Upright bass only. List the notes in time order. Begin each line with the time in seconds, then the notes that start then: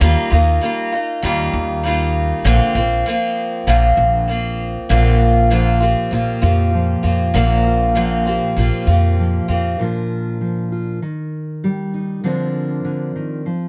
0.01 D#2
0.32 D#2
1.23 D#2
1.54 D#2
2.45 A#1
2.75 A#1
3.67 A#1
3.97 A#1
4.90 A#1
6.12 A#1
6.43 F2
7.04 F2
7.34 A#1
8.57 A#1
8.87 F2
9.49 F2